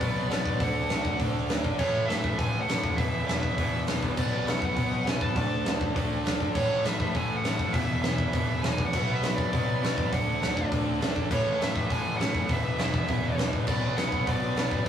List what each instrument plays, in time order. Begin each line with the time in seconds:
Already playing: lead electric guitar D5
0.01 picked electric bass B1, overdriven electric guitar B2 F#3 B3, kick, open hi-hat
0.16 picked electric bass B1
0.30 picked electric bass B1, overdriven electric guitar B2 F#3 B3, lead electric guitar D5, snare, open hi-hat
0.46 picked electric bass A1, kick
0.60 picked electric bass D2, overdriven electric guitar D3 A3 D4, lead electric guitar F#5, kick, open hi-hat
0.76 picked electric bass D2
0.89 picked electric bass D2, overdriven electric guitar D3 A3 D4, snare, open hi-hat
1.05 kick
1.20 picked electric bass D2, overdriven electric guitar D3 A3 D4, kick, open hi-hat
1.35 picked electric bass D2
1.49 picked electric bass D2, overdriven electric guitar D3 A3 D4, snare, open hi-hat
1.64 picked electric bass B1, kick
1.78 picked electric bass A1, overdriven electric guitar A2 E3 A3, lead electric guitar C#5, kick, crash
1.93 picked electric bass A1
2.07 picked electric bass A1, overdriven electric guitar E3 A3, lead electric guitar E5, snare, open hi-hat
2.11 overdriven electric guitar A2
2.24 kick
2.38 picked electric bass A1, overdriven electric guitar A2 E3 A3, lead electric guitar G#5, kick, open hi-hat
2.52 picked electric bass A1
2.61 lead electric guitar F#5
2.68 picked electric bass A1, overdriven electric guitar A2 E3 A3, snare, open hi-hat
2.83 picked electric bass D#2, kick
2.97 picked electric bass E1, overdriven electric guitar E2 B2 E3, lead electric guitar E5, kick, open hi-hat
3.14 picked electric bass E1
3.28 picked electric bass E1, overdriven electric guitar E2 B2 E3, lead electric guitar E5, snare, open hi-hat
3.43 kick
3.57 picked electric bass E1, overdriven electric guitar E2 B2 E3, kick, open hi-hat
3.72 picked electric bass E1
3.87 picked electric bass E1, overdriven electric guitar E2 B2 E3, snare, open hi-hat
4.02 picked electric bass C#2, kick
4.17 picked electric bass B1, overdriven electric guitar B2 F#3 B3, lead electric guitar D5, kick, crash
4.32 picked electric bass B1
4.47 picked electric bass B1, overdriven electric guitar B2 F#3 B3, lead electric guitar F#5, snare, open hi-hat
4.62 lead electric guitar F#5, kick
4.76 picked electric bass B1, overdriven electric guitar B2 F#3 B3, kick, open hi-hat
4.92 picked electric bass B1
5.06 picked electric bass B1, overdriven electric guitar B2 F#3 B3, lead electric guitar G#5, snare, open hi-hat
5.21 picked electric bass A1, lead electric guitar A5, kick
5.35 picked electric bass D2, overdriven electric guitar D3 A3 D4, kick, open hi-hat
5.50 picked electric bass D2
5.65 picked electric bass D2, overdriven electric guitar D3 A3 D4, snare, open hi-hat
5.81 kick
5.96 picked electric bass D2, overdriven electric guitar D3 A3 D4, kick, open hi-hat
6.10 picked electric bass D2
6.25 picked electric bass D2, overdriven electric guitar D3 A3 D4, snare, open hi-hat
6.40 picked electric bass G#1, kick
6.55 picked electric bass A1, overdriven electric guitar A2 E3 A3, lead electric guitar C#5, kick, crash
6.71 picked electric bass A1
6.84 picked electric bass A1, overdriven electric guitar A2 E3 A3, lead electric guitar E5, snare, open hi-hat
7.00 distorted electric guitar A2 E3 A3, kick
7.14 picked electric bass A1, overdriven electric guitar A2 E3 A3, lead electric guitar G#5, kick, open hi-hat
7.30 picked electric bass A1
7.37 lead electric guitar F#5
7.44 picked electric bass A1, overdriven electric guitar A2 E3 A3, snare, open hi-hat
7.59 picked electric bass F#1, kick
7.73 picked electric bass E1, overdriven electric guitar E2 B2 E3, lead electric guitar E5, kick, open hi-hat
7.89 picked electric bass E1
8.02 picked electric bass E1, overdriven electric guitar E2 B2 E3, lead electric guitar E5, snare, open hi-hat
8.18 distorted electric guitar E2 B2 E3, kick
8.33 picked electric bass E1, overdriven electric guitar E2 B2 E3, kick, open hi-hat
8.49 picked electric bass E1
8.62 picked electric bass E1, overdriven electric guitar B2 E3, lead electric guitar G#5, snare, open hi-hat
8.66 overdriven electric guitar E2
8.78 picked electric bass D2, kick
8.86 lead electric guitar F#5
8.93 picked electric bass B1, overdriven electric guitar B2 F#3 B3, kick, crash
9.08 picked electric bass B1
9.14 lead electric guitar E5
9.22 picked electric bass B1, overdriven electric guitar B2 F#3 B3, snare, open hi-hat
9.36 distorted electric guitar F#3 B3, lead electric guitar D5, kick
9.40 distorted electric guitar B2
9.53 picked electric bass B1, overdriven electric guitar B2 F#3 B3, kick, open hi-hat
9.69 picked electric bass B1
9.83 picked electric bass B1, overdriven electric guitar B2 F#3 B3, lead electric guitar D5, snare, open hi-hat
9.98 picked electric bass A1, kick
10.13 picked electric bass D2, overdriven electric guitar D3 A3 D4, lead electric guitar F#5, kick, open hi-hat
10.27 picked electric bass D2
10.42 picked electric bass D2, overdriven electric guitar D3 A3 D4, snare, open hi-hat
10.57 distorted electric guitar D3 A3 D4, kick
10.71 picked electric bass D2, overdriven electric guitar D3 A3 D4, kick, open hi-hat
10.86 picked electric bass D2
11.01 picked electric bass D2, overdriven electric guitar D3 A3 D4, snare, open hi-hat
11.16 picked electric bass G#1, kick
11.31 picked electric bass A1, overdriven electric guitar A2 E3 A3, lead electric guitar C#5, kick, crash
11.45 picked electric bass A1
11.60 picked electric bass A1, overdriven electric guitar A2 E3 A3, lead electric guitar E5, snare, open hi-hat
11.75 distorted electric guitar A2 E3 A3, kick
11.90 picked electric bass A1, overdriven electric guitar A2 E3 A3, lead electric guitar G#5, kick, open hi-hat
12.06 picked electric bass A1
12.17 picked electric bass A1, overdriven electric guitar A3, lead electric guitar F#5, open hi-hat
12.21 overdriven electric guitar A2 E3, snare
12.35 picked electric bass F#1, kick
12.49 picked electric bass E1, overdriven electric guitar E2 B2 E3, lead electric guitar E5, kick, open hi-hat
12.64 picked electric bass E1
12.78 picked electric bass E1, overdriven electric guitar E2 B2 E3, lead electric guitar E5, snare, open hi-hat
12.93 distorted electric guitar E2 B2 E3, kick
13.08 picked electric bass E1, overdriven electric guitar E2 B2 E3, kick, open hi-hat
13.24 picked electric bass E1
13.38 picked electric bass E1, overdriven electric guitar E2 B2 E3, snare, open hi-hat
13.53 picked electric bass A1, kick
13.67 picked electric bass B1, overdriven electric guitar B2 F#3 B3, lead electric guitar D5, kick, crash
13.82 picked electric bass B1
13.97 picked electric bass B1, overdriven electric guitar B2 F#3 B3, lead electric guitar F#5, snare, open hi-hat
14.12 distorted electric guitar B2 F#3 B3, kick
14.26 picked electric bass B1, overdriven electric guitar B2 F#3 B3, lead electric guitar D5, kick, open hi-hat
14.42 picked electric bass B1
14.56 picked electric bass B1, overdriven electric guitar B2 F#3 B3, snare, open hi-hat
14.71 picked electric bass A1, kick